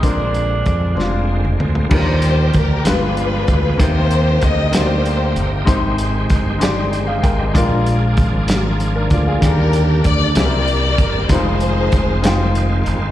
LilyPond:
<<
  \new Staff \with { instrumentName = "String section" } { \time 6/8 \key ees \major \tempo 4. = 64 << { r2. | c''4 bes'8 b'4. | c''4 ees''8 c''4 r8 | r2. |
r2. | bes'4 d''8 d''4. | c''2 r4 | } \\ { r2. | g'4. <d' f'>4. | g'4. g'4. | r2. |
r2. | <d' g'>4. <g' bes'>4. | <ees' aes'>2 r4 | } >> }
  \new Staff \with { instrumentName = "Grand piano" } { \time 6/8 \key ees \major << { r2. | r2. | r2. | r2 r16 <aes' f''>16 <bes' g''>16 <g' ees''>16~ |
<g' ees''>16 r2 <d' bes'>16 <f' d''>16 <aes' f''>16~ | <aes' f''>16 r2 r8. | r2. | } \\ { <aes c' d' bes'>4 r8 <aes c' d' f'>4 r8 | <g d' ees' bes'>4 r8 <aes f' g' b'>4 r8 | <bes ees' g' c''>4 r8 <bes ees' g' c'' d''>4 r8 | <aes ees' g' c''>4 r8 <aes ees' g' d''>4 r8 |
<aes d' f' bes'>4 r2 | <g d' g' aes' bes'>4 r8 <g c' e' aes' bes'>4 r8 | <g aes ees' f' c''>4 r8 <aes ees' f' g''>4 r8 | } >> }
  \new Staff \with { instrumentName = "Grand piano" } { \clef bass \time 6/8 \key ees \major bes,4. r4. | bes,4. g,4. | c4. r4. | c4. r4. |
bes,4. r4. | d4. c4. | r2. | }
  \new Staff \with { instrumentName = "Tenor saxophone" } { \time 6/8 \key ees \major d'2 r4 | r2. | r2. | r2. |
r2. | r2. | r2. | }
  \new Staff \with { instrumentName = "Tonewheel organ" } { \time 6/8 \key ees \major << { aes2. | g'4. g'4.~ | g'2. | g'2. |
aes'2. | g'4. g'4. | f'2. | } \\ { c'2. | d''4. b4. | c'2. | c'2. |
d'2.~ | d'4. c'4.~ | c'2. | } >> }
  \new Staff \with { instrumentName = "Tonewheel organ" } { \clef bass \time 6/8 \key ees \major << { bes2. | bes4. aes4. | bes2. | aes2. |
bes2.~ | bes2. | aes2. | } \\ { d2. | g4. f4. | ees'2. | ees2. |
f2. | d4. e4. | ees2. | } >> }
  \new Staff \with { instrumentName = "Fingered electric bass" } { \clef bass \time 6/8 \key ees \major bes,,4 f,8 f,,4 d,8 | ees,4 d,8 g,,4 d,8 | ees,4 d,4. g,,8 | aes,,4 g,,4. aes,,8 |
bes,,4 aes,,4. d,8 | ees,4 d,8 c,4 g,,8 | f,,4 f,,4. g,,8 | }
  \new DrumStaff \with { instrumentName = "Drums" } \drummode { \time 6/8 <hh bd>8 hh8 <hh bd>8 sn8. toml16 tomfh16 tomfh16 | <cymc bd>8 hh8 <hh bd>8 <hh sn>8 hh8 <hh bd>8 | <hh bd>8 hh8 <hh bd>8 <hh sn>8 hh8 hh8 | <hh bd>8 hh8 <hh bd>8 <hh sn>8 hh8 <hh bd>8 |
<hh bd>8 hh8 <hh bd>8 <hh sn>8 hh8 <hh bd>8 | <hh bd>8 hh8 <hh bd>8 <hh sn>8 hh8 <hh bd>8 | <hh bd>8 hh8 <hh bd>8 <hh sn>8 hh8 hh8 | }
>>